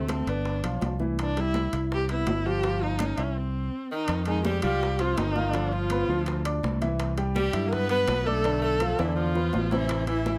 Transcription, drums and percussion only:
0.08 high bongo medium
0.08 high conga medium
0.08 high timbale medium
0.08 low timbale medium
0.27 high bongo soft
0.27 high timbale medium
0.45 high bongo medium
0.45 high conga soft
0.64 high conga soft
0.64 high timbale loud
0.81 high bongo soft
0.81 low bongo medium
0.81 high conga medium
0.81 high timbale medium
0.81 low timbale medium
1.00 high bongo soft
1.00 high conga medium
1.18 high bongo medium
1.18 high conga soft
1.18 high timbale medium
1.36 high bongo soft
1.36 high conga soft
1.36 high timbale medium
1.54 high bongo medium
1.54 high conga medium
1.54 low timbale medium
1.72 high bongo soft
1.72 high conga soft
1.72 high timbale medium
1.91 high bongo medium
1.91 high conga soft
2.09 high conga soft
2.09 high timbale medium
2.27 high bongo soft
2.27 low bongo medium
2.27 high conga medium
2.27 high timbale medium
2.27 low timbale medium
2.46 high bongo soft
2.46 high conga soft
2.63 high bongo medium
2.63 high conga soft
2.63 high timbale medium
2.82 high bongo soft
2.82 high conga soft
2.99 high bongo medium
2.99 high conga medium
2.99 high timbale medium
2.99 low timbale medium
3.18 high bongo soft
3.18 high timbale medium
4.08 high bongo medium
4.08 high conga soft
4.08 high timbale medium
4.26 high conga soft
4.26 high timbale medium
4.45 high bongo medium
4.45 high conga loud
4.62 high conga soft
4.62 low conga medium
4.62 high timbale medium
4.81 high bongo medium
4.81 high conga soft
4.99 high conga soft
4.99 high timbale medium
5.17 high bongo medium
5.17 low bongo medium
5.17 high conga medium
5.17 high timbale medium
5.17 low timbale medium
5.36 high conga medium
5.53 high bongo medium
5.53 high conga soft
5.53 high timbale medium
5.72 high bongo soft
5.72 high conga soft
5.90 high bongo medium
5.90 high conga medium
5.90 high timbale medium
6.10 high bongo soft
6.26 high bongo medium
6.26 high conga soft
6.26 high timbale medium
6.45 high conga soft
6.45 high timbale loud
6.63 high bongo medium
6.63 low bongo medium
6.63 high conga medium
6.81 high bongo soft
6.81 high conga medium
6.81 high timbale medium
6.99 high bongo medium
6.99 high conga soft
6.99 high timbale medium
7.18 high conga soft
7.18 high timbale medium
7.36 high bongo medium
7.36 high conga medium
7.53 high conga soft
7.53 low conga medium
7.53 high timbale loud
7.73 high bongo medium
7.73 high conga soft
7.73 low conga medium
7.89 high conga soft
7.89 high timbale medium
8.08 high bongo medium
8.08 low bongo medium
8.08 high conga medium
8.08 high timbale medium
8.08 low timbale medium
8.27 high conga medium
8.44 high bongo medium
8.44 high conga soft
8.44 high timbale medium
8.63 high bongo soft
8.63 high conga soft
8.80 high bongo medium
8.80 high conga medium
8.80 high timbale medium
8.99 high bongo loud
8.99 high timbale medium
9.18 high conga soft
9.35 low bongo medium
9.35 high conga soft
9.53 low bongo medium
9.53 high conga medium
9.53 low timbale medium
9.71 low bongo loud
9.71 high conga medium
9.71 low timbale medium
9.89 high bongo medium
9.89 high timbale loud
10.07 high conga soft
10.07 high timbale medium
10.26 high bongo medium
10.26 high conga loud

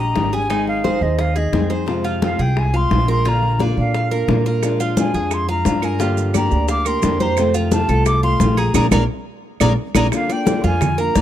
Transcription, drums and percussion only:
0.16 high bongo medium
0.16 low bongo medium
0.16 high conga medium
0.33 high conga soft
0.50 high bongo medium
0.50 high conga soft
0.67 high bongo soft
0.67 high conga soft
0.85 high bongo medium
0.85 high conga medium
1.02 high bongo soft
1.02 high conga soft
1.19 high bongo medium
1.19 high conga soft
1.37 high conga soft
1.53 high bongo medium
1.53 low bongo medium
1.53 high conga medium
1.70 high bongo soft
1.88 high bongo medium
1.88 high conga soft
2.05 high conga soft
2.22 high bongo medium
2.22 high conga medium
2.40 high conga soft
2.57 high bongo medium
2.57 high conga soft
2.74 high conga soft
2.91 high bongo medium
2.91 low bongo medium
2.91 high conga medium
3.08 high conga soft
3.25 high bongo medium
3.25 high conga soft
3.43 high bongo soft
3.43 high conga soft
3.60 high bongo medium
3.60 high conga medium
3.77 high bongo soft
3.77 high conga soft
3.94 high bongo medium
3.94 high conga soft
4.11 high conga soft
4.28 high bongo medium
4.28 low bongo medium
4.28 high conga medium
4.46 high bongo soft
4.63 high bongo medium
4.63 high conga soft
4.63 claves medium
4.63 maracas medium
4.80 high conga soft
4.80 maracas medium
4.97 high bongo medium
4.97 high conga medium
4.97 maracas medium
5.14 high conga soft
5.14 maracas soft
5.31 high bongo medium
5.31 high conga soft
5.31 claves medium
5.31 maracas medium
5.49 high conga soft
5.65 high bongo medium
5.65 low bongo medium
5.65 high conga medium
5.65 maracas medium
5.82 high conga soft
5.82 claves medium
5.82 maracas soft
6.00 high bongo medium
6.00 high conga soft
6.00 maracas medium
6.17 high bongo soft
6.17 high conga soft
6.17 maracas medium
6.34 high bongo soft
6.34 high conga medium
6.34 claves medium
6.34 maracas medium
6.51 high bongo soft
6.51 high conga soft
6.51 maracas soft
6.68 high bongo medium
6.68 high conga soft
6.68 maracas medium
6.85 high conga soft
6.85 claves medium
6.85 maracas medium
7.02 high bongo medium
7.02 low bongo medium
7.02 high conga medium
7.02 maracas medium
7.20 high bongo soft
7.20 high conga medium
7.20 maracas soft
7.37 high bongo medium
7.37 high conga soft
7.37 claves medium
7.37 maracas medium
7.54 high conga soft
7.54 maracas medium
7.72 high bongo soft
7.72 high conga medium
7.72 maracas medium
7.89 high conga soft
7.89 maracas soft
8.06 high bongo medium
8.06 high conga soft
8.06 claves medium
8.06 maracas medium
8.23 high conga soft
8.40 high bongo medium
8.40 low bongo medium
8.40 high conga medium
8.40 maracas medium
8.57 high conga soft
8.57 claves medium
8.57 maracas soft
8.74 high bongo medium
8.74 high conga medium
8.74 claves medium
8.74 maracas medium
8.91 high bongo medium
8.91 high conga loud
8.91 claves loud
8.91 maracas medium
9.60 high bongo medium
9.60 high conga loud
9.60 claves medium
9.60 maracas loud
9.95 high bongo medium
9.95 high conga loud
9.95 claves loud
9.95 maracas medium
10.12 high bongo medium
10.12 high conga soft
10.12 claves medium
10.12 maracas medium
10.29 high conga soft
10.29 maracas soft
10.47 high bongo medium
10.47 high conga loud
10.47 maracas medium
10.64 high conga medium
10.64 maracas soft
10.81 high bongo medium
10.81 high conga soft
10.81 low conga medium
10.81 claves medium
10.81 maracas medium
10.99 high conga soft
10.99 maracas soft
11.16 high bongo medium
11.16 low bongo medium
11.16 high conga medium
11.16 maracas medium

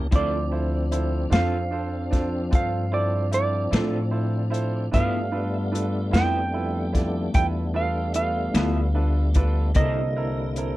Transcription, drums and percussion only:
0.12 kick medium
0.12 closed hi-hat medium
0.92 closed hi-hat medium
1.32 snare medium
1.32 closed hi-hat medium
2.13 kick medium
2.13 snare soft
2.13 closed hi-hat soft
2.53 kick medium
2.53 closed hi-hat medium
3.33 closed hi-hat soft
3.73 snare medium
3.73 closed hi-hat medium
4.54 closed hi-hat soft
4.94 kick medium
4.94 closed hi-hat medium
5.75 closed hi-hat soft
6.14 snare medium
6.14 closed hi-hat medium
6.95 kick medium
6.95 snare soft
6.95 closed hi-hat medium
7.34 kick loud
7.34 closed hi-hat medium
8.14 closed hi-hat medium
8.55 snare medium
8.55 closed hi-hat medium
9.34 kick medium
9.34 closed hi-hat medium
9.75 kick medium
9.75 closed hi-hat medium
10.56 closed hi-hat medium

